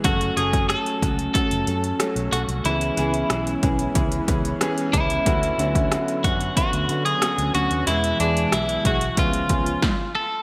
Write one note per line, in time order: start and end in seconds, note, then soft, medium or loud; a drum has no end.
0.03 0.29 F#1 medium
0.03 0.24 F#3 medium
0.03 2.63 F#3 medium
0.03 0.24 A3 medium
0.03 2.63 A3 medium
0.03 0.24 C#4 medium
0.03 7.83 C#4 medium
0.03 0.36 F#4 medium
0.03 2.63 F#4 medium
0.03 0.25 A4 medium
0.03 kick loud
0.03 closed hi-hat medium
0.21 closed hi-hat soft
0.36 0.73 F#1 medium
0.36 0.57 F#3 medium
0.36 0.57 A3 medium
0.36 0.57 C#4 medium
0.36 0.67 G#4 medium
0.36 0.57 A4 loud
0.36 closed hi-hat medium
0.53 kick medium
0.53 closed hi-hat soft
0.69 0.89 F#3 medium
0.69 0.90 A3 medium
0.69 0.90 C#4 medium
0.69 1.33 A4 medium
0.69 0.90 A4 medium
0.69 cross-stick loud
0.69 closed hi-hat medium
0.86 closed hi-hat soft
1.02 1.27 C#2 medium
1.02 1.22 F#3 medium
1.02 1.22 A3 medium
1.02 1.23 C#4 medium
1.02 1.23 F#4 medium
1.02 kick medium
1.02 closed hi-hat medium
1.19 closed hi-hat soft
1.34 1.55 F#3 medium
1.34 1.55 A3 medium
1.34 1.55 C#4 medium
1.34 1.96 A4 medium
1.34 1.56 A4 medium
1.34 kick medium
1.34 closed hi-hat medium
1.51 1.63 F#1 medium
1.51 closed hi-hat medium
1.67 1.92 F#2 medium
1.67 1.87 F#3 medium
1.67 1.87 A3 medium
1.67 1.88 C#4 medium
1.67 1.88 A4 medium
1.67 closed hi-hat medium
1.84 closed hi-hat medium
1.99 2.20 F#3 medium
1.99 2.20 A3 medium
1.99 2.20 C#4 medium
1.99 2.20 A4 medium
1.99 cross-stick medium
1.99 closed hi-hat medium
2.16 2.28 B1 medium
2.16 closed hi-hat medium
2.32 2.45 B1 medium
2.32 2.52 F#3 medium
2.32 2.52 A3 medium
2.32 2.53 C#4 medium
2.32 2.41 F#4 medium
2.32 2.53 A4 medium
2.32 closed hi-hat medium
2.48 2.61 C2 medium
2.48 closed hi-hat soft
2.64 2.89 C#2 loud
2.64 2.85 E3 medium
2.64 5.24 G#3 medium
2.64 2.85 B3 medium
2.64 7.83 B3 medium
2.64 2.85 C#4 medium
2.64 4.57 E4 medium
2.64 5.24 E4 medium
2.64 2.85 G#4 medium
2.64 closed hi-hat medium
2.81 closed hi-hat soft
2.96 3.22 C#2 medium
2.96 3.17 E3 medium
2.96 3.17 B3 medium
2.96 3.18 C#4 medium
2.96 3.18 G#4 loud
2.96 closed hi-hat medium
3.14 closed hi-hat soft
3.29 3.55 B1 medium
3.29 3.50 E3 medium
3.29 3.50 B3 medium
3.29 3.50 C#4 medium
3.29 3.51 G#4 medium
3.29 cross-stick loud
3.29 closed hi-hat medium
3.47 closed hi-hat soft
3.62 3.87 B1 medium
3.62 3.83 E3 medium
3.62 3.83 B3 medium
3.62 3.83 C#4 medium
3.62 3.83 G#4 medium
3.62 kick medium
3.62 closed hi-hat medium
3.79 closed hi-hat soft
3.95 4.20 C#2 medium
3.95 4.15 E3 medium
3.95 4.16 B3 medium
3.95 4.16 C#4 medium
3.95 4.16 G#4 medium
3.95 kick medium
3.95 closed hi-hat medium
4.12 closed hi-hat medium
4.27 4.52 C#2 medium
4.27 4.48 E3 medium
4.27 4.48 B3 medium
4.27 4.48 C#4 medium
4.27 4.49 G#4 medium
4.27 kick medium
4.27 closed hi-hat medium
4.45 closed hi-hat soft
4.61 4.81 E3 loud
4.61 4.81 B3 medium
4.61 4.81 C#4 medium
4.61 4.81 G#4 loud
4.61 cross-stick medium
4.61 closed hi-hat medium
4.78 closed hi-hat medium
4.93 5.18 C#2 medium
4.93 5.13 E3 medium
4.93 5.14 B3 medium
4.93 5.14 C#4 medium
4.93 6.28 E4 medium
4.93 5.14 G#4 medium
4.93 kick medium
4.93 closed hi-hat medium
5.10 closed hi-hat soft
5.26 5.51 D2 loud
5.26 5.46 D3 medium
5.26 7.84 F#3 medium
5.26 5.46 B3 medium
5.26 5.46 C#4 medium
5.26 7.84 D4 medium
5.26 5.47 F#4 loud
5.26 kick loud
5.26 closed hi-hat medium
5.43 closed hi-hat soft
5.58 5.95 D2 medium
5.58 5.79 D3 medium
5.58 5.79 B3 medium
5.58 5.79 C#4 medium
5.58 5.79 F#4 loud
5.58 closed hi-hat medium
5.75 kick medium
5.75 closed hi-hat soft
5.91 6.11 D3 medium
5.91 6.11 B3 medium
5.91 6.12 C#4 medium
5.91 6.12 F#4 medium
5.91 cross-stick loud
5.91 closed hi-hat medium
6.08 closed hi-hat soft
6.24 6.48 F#2 medium
6.24 6.44 D3 medium
6.24 6.44 B3 medium
6.24 6.44 C#4 medium
6.24 6.56 F#4 medium
6.24 6.44 F#4 medium
6.24 kick medium
6.24 closed hi-hat medium
6.41 closed hi-hat soft
6.56 6.76 D3 medium
6.56 6.77 B3 medium
6.56 6.77 C#4 medium
6.56 7.05 F#4 loud
6.56 6.77 F#4 medium
6.56 kick medium
6.56 closed hi-hat medium
6.73 6.85 D2 medium
6.73 closed hi-hat medium
6.89 7.13 D3 medium
6.89 7.09 D3 medium
6.89 7.09 B3 medium
6.89 7.09 C#4 medium
6.89 7.10 F#4 medium
6.89 closed hi-hat medium
7.05 7.54 G#4 loud
7.05 closed hi-hat soft
7.22 7.42 D3 medium
7.22 7.42 B3 medium
7.22 7.42 C#4 medium
7.22 7.42 F#4 medium
7.22 cross-stick medium
7.22 closed hi-hat medium
7.38 7.50 D2 medium
7.38 closed hi-hat medium
7.54 7.67 D2 medium
7.54 7.74 D3 medium
7.54 7.74 B3 medium
7.54 7.75 C#4 medium
7.54 7.87 F#4 medium
7.54 7.75 F#4 medium
7.54 closed hi-hat medium
7.71 7.83 D#2 medium
7.71 closed hi-hat soft
7.87 8.12 E2 loud
7.87 9.16 B2 medium
7.87 8.07 E3 medium
7.87 9.16 E3 medium
7.87 8.07 G#3 medium
7.87 9.81 G#3 medium
7.87 8.07 B3 medium
7.87 8.17 E4 medium
7.87 9.16 E4 medium
7.87 8.07 G#4 loud
7.87 closed hi-hat medium
8.04 closed hi-hat soft
8.19 8.44 E2 medium
8.19 8.39 E3 medium
8.19 8.40 G#3 medium
8.19 8.40 B3 medium
8.19 8.53 D4 medium
8.19 8.40 G#4 medium
8.19 closed hi-hat medium
8.37 closed hi-hat soft
8.52 8.77 B1 medium
8.52 8.72 E3 medium
8.52 8.72 G#3 medium
8.52 8.72 B3 medium
8.52 8.83 E4 medium
8.52 8.73 G#4 medium
8.52 cross-stick loud
8.52 closed hi-hat medium
8.69 closed hi-hat soft
8.84 9.09 B1 medium
8.84 9.05 E3 medium
8.84 9.05 G#3 medium
8.84 9.05 B3 medium
8.84 9.19 F#4 medium
8.84 9.05 G#4 medium
8.84 kick medium
8.84 closed hi-hat medium
9.01 closed hi-hat medium
9.17 9.42 C#2 medium
9.17 9.83 C#3 medium
9.17 9.37 F3 medium
9.17 9.38 B3 medium
9.17 9.83 B3 medium
9.17 9.38 C#4 medium
9.17 9.83 F4 medium
9.17 10.12 F4 medium
9.17 9.38 G#4 medium
9.17 kick medium
9.17 closed hi-hat medium
9.33 closed hi-hat soft
9.49 9.74 C#2 medium
9.49 9.70 F3 medium
9.49 9.70 B3 medium
9.49 9.70 C#4 medium
9.49 9.70 G#4 medium
9.49 kick medium
9.49 closed hi-hat medium
9.66 closed hi-hat soft
9.82 kick loud
9.82 snare medium
10.15 10.42 A4 medium